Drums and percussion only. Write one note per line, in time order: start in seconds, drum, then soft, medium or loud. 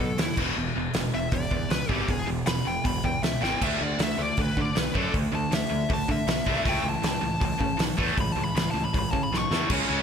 0.18 snare loud
0.18 open hi-hat medium
0.37 kick loud
0.37 crash loud
0.94 snare loud
0.94 open hi-hat medium
1.32 kick loud
1.32 open hi-hat medium
1.51 kick loud
1.70 snare loud
1.70 open hi-hat medium
1.89 kick medium
2.09 kick loud
2.09 open hi-hat medium
2.46 snare loud
2.46 open hi-hat medium
2.85 kick loud
2.85 open hi-hat medium
3.04 kick medium
3.23 snare loud
3.23 open hi-hat medium
3.43 snare medium
3.62 kick loud
3.62 crash medium
3.62 splash medium
3.99 snare loud
3.99 open hi-hat medium
4.37 kick loud
4.37 open hi-hat medium
4.57 kick medium
4.76 snare loud
4.76 open hi-hat medium
4.95 kick medium
5.14 kick loud
5.14 open hi-hat medium
5.52 snare loud
5.52 open hi-hat medium
5.90 kick loud
5.90 open hi-hat medium
6.09 kick loud
6.28 snare loud
6.28 open hi-hat medium
6.47 kick medium
6.65 kick loud
6.65 open hi-hat medium
7.03 snare loud
7.03 open hi-hat medium
7.41 kick loud
7.41 open hi-hat medium
7.61 kick loud
7.79 snare loud
7.79 open hi-hat medium
7.99 kick medium
8.18 kick loud
8.18 open hi-hat medium
8.57 snare loud
8.57 open hi-hat medium
8.94 kick loud
8.94 open hi-hat medium
9.13 kick medium
9.34 snare medium
9.53 snare loud
9.70 kick loud
9.70 crash loud
9.70 crash medium